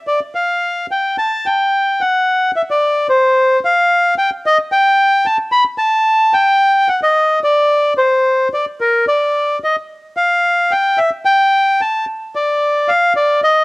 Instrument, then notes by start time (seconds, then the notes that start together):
bandoneon
0.07 D5
0.35 F5
0.91 G5
1.18 A5
1.46 G5
2.01 F#5
2.56 E5
2.71 D5
3.10 C5
3.65 F5
4.18 G5
4.46 D#5
4.72 G5
5.26 A5
5.52 B5
5.78 A5
6.34 G5
6.88 F#5
7.03 D#5
7.44 D5
7.97 C5
8.54 D5
8.81 A#4
9.08 D5
9.64 D#5
10.17 F5
10.71 G5
10.98 E5
11.25 G5
11.81 A5
12.35 D5
12.88 F5
13.16 D5
13.44 D#5